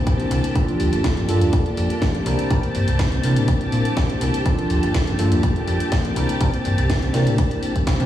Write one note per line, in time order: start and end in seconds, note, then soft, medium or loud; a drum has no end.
0.00 0.52 G3 medium
0.00 0.52 C4 medium
0.00 0.53 D4 medium
0.00 0.53 E4 medium
0.00 0.54 G4 medium
0.00 0.53 A#4 medium
0.00 0.54 A5 medium
0.06 0.29 E3 medium
0.06 0.30 A#3 medium
0.06 0.32 C4 loud
0.06 0.32 G4 medium
0.06 kick loud
0.06 closed hi-hat medium
0.06 shaker medium
0.19 closed hi-hat soft
0.19 shaker soft
0.30 0.41 C2 loud
0.30 0.44 E3 medium
0.30 0.44 A#3 medium
0.30 0.44 C4 medium
0.30 0.42 G4 medium
0.30 closed hi-hat medium
0.30 shaker loud
0.43 0.55 A#3 medium
0.43 0.56 C4 medium
0.43 0.55 G4 medium
0.43 closed hi-hat medium
0.43 shaker soft
0.55 0.75 G1 loud
0.55 0.92 F3 medium
0.55 1.26 G3 medium
0.55 1.26 A#3 medium
0.55 0.93 A#3 medium
0.55 1.26 D4 medium
0.55 0.93 D4 medium
0.55 1.26 F4 medium
0.55 8.06 G4 medium
0.55 0.91 G4 medium
0.55 1.26 A4 medium
0.55 8.06 A5 medium
0.55 kick loud
0.55 closed hi-hat medium
0.55 shaker medium
0.68 closed hi-hat soft
0.80 0.90 D2 medium
0.80 open hi-hat loud
0.80 shaker medium
0.92 1.11 G1 medium
0.92 1.04 A#3 medium
0.92 1.04 D4 medium
0.92 1.04 G4 medium
0.92 closed hi-hat soft
0.92 shaker soft
1.04 1.27 F3 medium
1.04 1.28 A#3 medium
1.04 1.29 D4 loud
1.04 1.30 G4 loud
1.04 kick loud
1.04 snare loud
1.04 closed hi-hat medium
1.17 1.26 G1 medium
1.17 closed hi-hat soft
1.17 shaker soft
1.28 1.43 G2 medium
1.28 1.41 F3 medium
1.28 2.23 G3 medium
1.28 2.23 A#3 medium
1.28 1.42 A#3 medium
1.28 2.23 D4 medium
1.28 1.41 D4 medium
1.28 2.24 F4 medium
1.28 1.39 G4 medium
1.28 2.24 A4 loud
1.28 open hi-hat loud
1.28 shaker medium
1.41 1.50 E2 medium
1.41 1.67 A#3 soft
1.41 1.66 D4 soft
1.41 1.64 G4 medium
1.41 closed hi-hat medium
1.41 shaker soft
1.53 kick loud
1.53 closed hi-hat medium
1.53 shaker soft
1.65 1.75 F2 soft
1.65 1.92 A#3 medium
1.65 1.90 D4 medium
1.65 1.88 G4 medium
1.65 closed hi-hat soft
1.65 shaker soft
1.77 1.87 F2 medium
1.77 open hi-hat loud
1.77 shaker medium
1.89 2.01 A#3 soft
1.89 2.02 D4 soft
1.89 2.01 G4 medium
1.89 closed hi-hat soft
1.89 shaker soft
2.01 2.25 F3 medium
2.01 2.26 A#3 medium
2.01 2.27 D4 loud
2.01 2.27 G4 loud
2.01 kick loud
2.01 snare loud
2.01 closed hi-hat medium
2.15 closed hi-hat soft
2.15 shaker soft
2.25 2.36 C2 loud
2.25 2.39 E3 medium
2.25 2.48 G3 medium
2.25 2.39 A#3 medium
2.25 2.48 C4 medium
2.25 2.39 C4 medium
2.25 2.48 D4 medium
2.25 2.48 E4 medium
2.25 2.37 G4 medium
2.25 2.48 A#4 medium
2.25 open hi-hat loud
2.25 shaker loud
2.38 2.50 A#3 medium
2.38 2.50 C4 medium
2.38 2.50 G4 medium
2.38 closed hi-hat medium
2.38 shaker soft
2.50 2.70 C2 loud
2.50 2.88 E3 medium
2.50 2.58 G3 medium
2.50 2.88 A#3 medium
2.50 2.58 C4 medium
2.50 2.88 C4 loud
2.50 2.58 D4 medium
2.50 2.59 E4 medium
2.50 2.86 G4 medium
2.50 2.59 A#4 loud
2.50 kick loud
2.50 closed hi-hat medium
2.50 shaker soft
2.63 closed hi-hat soft
2.75 2.85 G2 medium
2.75 open hi-hat loud
2.75 shaker medium
2.87 3.06 C2 medium
2.87 2.99 A#3 medium
2.87 2.99 C4 medium
2.87 2.99 G4 medium
2.87 closed hi-hat soft
2.87 shaker soft
2.99 3.22 E3 medium
2.99 3.23 A#3 loud
2.99 3.24 C4 loud
2.99 3.25 G4 loud
2.99 kick loud
2.99 snare loud
2.99 closed hi-hat medium
3.12 3.21 C2 medium
3.12 closed hi-hat soft
3.12 shaker soft
3.23 3.38 C3 medium
3.23 3.36 E3 medium
3.23 4.43 G3 medium
3.23 3.37 A#3 medium
3.23 4.43 C4 medium
3.23 3.37 C4 medium
3.23 4.43 D4 medium
3.23 4.43 E4 medium
3.23 3.35 G4 medium
3.23 4.43 A#4 medium
3.23 open hi-hat loud
3.23 shaker medium
3.36 3.46 A2 medium
3.36 3.62 A#3 soft
3.36 3.61 C4 medium
3.36 3.59 G4 medium
3.36 closed hi-hat medium
3.36 shaker soft
3.48 kick loud
3.48 closed hi-hat medium
3.48 shaker soft
3.60 3.70 A#2 soft
3.60 3.87 A#3 medium
3.60 3.85 C4 medium
3.60 3.83 G4 medium
3.60 closed hi-hat soft
3.60 shaker soft
3.72 3.82 A#2 medium
3.72 open hi-hat loud
3.72 shaker medium
3.84 3.96 A#3 soft
3.84 3.97 C4 soft
3.84 3.96 G4 medium
3.84 closed hi-hat medium
3.84 shaker soft
3.96 4.19 E3 medium
3.96 4.21 A#3 loud
3.96 4.22 C4 medium
3.96 4.22 G4 loud
3.96 kick loud
3.96 snare loud
3.96 closed hi-hat medium
4.10 closed hi-hat soft
4.10 shaker soft
4.21 4.31 C2 loud
4.21 4.34 E3 medium
4.21 4.34 A#3 medium
4.21 4.34 C4 medium
4.21 4.32 G4 medium
4.21 open hi-hat loud
4.21 shaker medium
4.33 4.45 A#3 medium
4.33 4.46 C4 medium
4.33 4.45 G4 medium
4.33 closed hi-hat medium
4.45 4.65 G1 loud
4.45 4.83 F3 medium
4.45 5.16 G3 medium
4.45 5.16 A#3 medium
4.45 4.83 A#3 medium
4.45 5.16 D4 medium
4.45 4.83 D4 medium
4.45 5.16 F4 medium
4.45 4.81 G4 medium
4.45 5.17 A4 medium
4.45 kick loud
4.45 closed hi-hat medium
4.45 shaker soft
4.59 closed hi-hat soft
4.70 4.80 D2 medium
4.70 open hi-hat loud
4.70 shaker medium
4.82 5.01 G1 medium
4.82 4.94 A#3 medium
4.82 4.94 D4 medium
4.82 4.94 G4 medium
4.82 closed hi-hat medium
4.82 shaker soft
4.94 5.17 F3 medium
4.94 5.18 A#3 medium
4.94 5.19 D4 medium
4.94 5.20 G4 medium
4.94 kick loud
4.94 snare loud
4.94 closed hi-hat medium
5.07 5.16 G1 medium
5.07 closed hi-hat soft
5.07 shaker soft
5.17 5.33 G2 medium
5.17 5.56 F3 medium
5.17 6.13 G3 medium
5.17 6.14 A#3 medium
5.17 5.56 A#3 medium
5.17 6.14 D4 medium
5.17 5.56 D4 medium
5.17 6.14 F4 medium
5.17 5.54 G4 medium
5.17 6.14 A4 loud
5.17 open hi-hat loud
5.17 shaker medium
5.32 5.41 E2 medium
5.32 closed hi-hat medium
5.32 shaker soft
5.43 kick loud
5.43 closed hi-hat medium
5.43 shaker soft
5.55 5.65 F2 soft
5.55 5.91 A#3 medium
5.55 5.92 D4 medium
5.55 5.92 G4 medium
5.55 closed hi-hat soft
5.55 shaker soft
5.68 5.78 F2 loud
5.68 open hi-hat loud
5.68 shaker medium
5.80 closed hi-hat medium
5.80 shaker soft
5.92 6.15 F3 medium
5.92 6.16 A#3 medium
5.92 6.17 D4 medium
5.92 6.17 G4 medium
5.92 kick loud
5.92 snare loud
5.92 closed hi-hat medium
6.05 closed hi-hat soft
6.05 shaker soft
6.16 6.26 C2 loud
6.16 6.29 E3 medium
6.16 6.38 G3 medium
6.16 6.30 A#3 medium
6.16 6.38 C4 medium
6.16 6.29 C4 medium
6.16 6.38 D4 medium
6.16 6.38 E4 medium
6.16 6.27 G4 medium
6.16 6.38 A#4 medium
6.16 open hi-hat loud
6.16 shaker medium
6.29 6.40 A#3 medium
6.29 6.41 C4 medium
6.29 6.40 G4 medium
6.29 closed hi-hat medium
6.40 6.60 C2 loud
6.40 6.78 E3 medium
6.40 6.48 G3 medium
6.40 6.78 A#3 medium
6.40 6.49 C4 medium
6.40 6.78 C4 medium
6.40 6.49 D4 medium
6.40 6.49 E4 medium
6.40 6.76 G4 loud
6.40 6.49 A#4 loud
6.40 kick loud
6.40 closed hi-hat medium
6.40 shaker medium
6.54 closed hi-hat soft
6.54 shaker soft
6.64 6.75 G2 medium
6.64 open hi-hat loud
6.64 shaker loud
6.77 6.97 C2 medium
6.77 6.89 A#3 medium
6.77 6.89 C4 medium
6.77 6.89 G4 medium
6.77 closed hi-hat medium
6.77 shaker soft
6.89 7.12 E3 medium
6.89 7.13 A#3 medium
6.89 7.14 C4 loud
6.89 7.15 G4 loud
6.89 kick loud
6.89 snare loud
6.89 closed hi-hat medium
7.02 7.11 C2 medium
7.02 closed hi-hat soft
7.02 shaker soft
7.13 7.28 C3 medium
7.13 7.27 E3 medium
7.13 8.06 G3 medium
7.13 7.27 A#3 medium
7.13 8.06 C4 medium
7.13 7.27 C4 medium
7.13 8.06 D4 medium
7.13 8.06 E4 medium
7.13 7.25 G4 medium
7.13 8.06 A#4 medium
7.13 snare medium
7.13 open hi-hat loud
7.13 shaker medium
7.26 7.36 A2 medium
7.26 7.53 A#3 soft
7.26 7.51 C4 soft
7.26 7.49 G4 medium
7.26 closed hi-hat medium
7.26 shaker soft
7.38 kick loud
7.38 closed hi-hat medium
7.38 shaker soft
7.51 7.77 A#3 medium
7.51 7.76 C4 medium
7.51 7.74 G4 medium
7.51 closed hi-hat soft
7.51 shaker soft
7.63 open hi-hat loud
7.63 shaker medium
7.75 7.86 A#3 soft
7.75 7.87 C4 medium
7.75 7.87 G4 medium
7.75 kick medium
7.75 closed hi-hat medium
7.87 7.98 C3 soft
7.87 8.06 E3 medium
7.87 8.06 A#3 medium
7.87 8.06 C4 loud
7.87 8.06 G4 medium
7.87 kick loud
7.87 snare loud
7.87 closed hi-hat medium
7.87 shaker medium
8.00 8.06 C3 loud
8.00 closed hi-hat soft
8.00 shaker soft